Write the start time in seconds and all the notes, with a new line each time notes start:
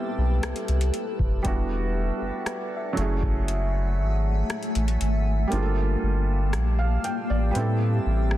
Already playing: G3 B3 C4 E4 G4 A4 B4 A5, downlifter
0.18 B1
0.43 C2, cross-stick, closed hi-hat
0.56 closed hi-hat
0.68 C2, closed hi-hat
0.81 closed hi-hat
0.94 closed hi-hat
1.19 F1, kick
1.43 E1 G3 B3 D4 E4 D5 E5 F#5, kick, closed hi-hat
1.47 F#4
2.22 F#1
2.46 B4, cross-stick, closed hi-hat
2.77 E5
2.93 F#3 A3
2.97 F#1 A3 C#4 E4 E5 G#5, closed hi-hat
3.01 G#4
3.23 kick
3.48 closed hi-hat
3.99 G#1
4.50 cross-stick, closed hi-hat
4.63 closed hi-hat
4.75 A1, closed hi-hat
4.88 closed hi-hat
5.01 G#1, closed hi-hat
5.47 G3 A#3 F5
5.52 G1 A#3 D4 F4 G4 C5 A5, closed hi-hat, swell
5.56 G#4
5.62 A4
6.03 G1
6.53 A#1, cross-stick, closed hi-hat
6.79 F5
7.04 G5, closed hi-hat
7.30 A1 D5
7.51 G3 B4
7.55 A2 C4 E4 A4, closed hi-hat
7.59 A4
8.06 A1
8.31 cross-stick